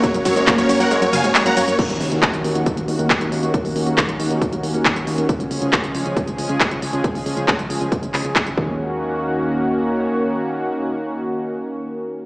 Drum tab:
CC |----------------|x---------------|----------------|----------------|
RD |--x---x---x---x-|----------------|----------------|----------------|
HH |xxoxxxoxxxoxxxox|xxoxxxoxxxoxxxox|xooxxxoxxxoxxxox|xxoxxxoxxxoxxxox|
SH |xxxxxxxxxxxxxxxx|----------------|----------------|----------------|
CP |----x-------x---|----x-------x---|----x-------x---|----x-------x---|
BD |o-o-o-----------|o---o---o---o---|o---o---o---o---|o---o---o---o---|

CC |----------------|----------------|----------------|
RD |----------------|----------------|----------------|
HH |xooxxxoxxxoxxx--|----------------|----------------|
SH |----------------|----------------|----------------|
CP |----x-----x-x---|----------------|----------------|
BD |o---o---o---o-o-|----------------|----------------|